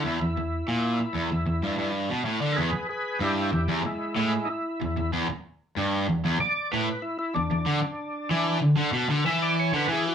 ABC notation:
X:1
M:4/4
L:1/16
Q:1/4=94
K:Bmix
V:1 name="Tonewheel organ"
E12 z4 | [K:Emix] [G^AB]2 [GB]2 [E=G]2 [EG]2 [^G,E]2 [G,E]2 [^DE]4 | z8 d2 B2 E E D2- | D6 z4 e d c B G F |]
V:2 name="Overdriven electric guitar" clef=bass
E,, E,, E,,2 ^A,,2 z E,, E,, E,, =G,, G,,2 B,, =A,, =D, | [K:Emix] E,, z3 =G,,2 E,, E,, z2 A,, z3 E,, E,, | E,, z3 =G,,2 E,, E,, z2 A,, z3 E,, E,, | D, z3 E,2 D, D, B,, D, E,3 D, E,2 |]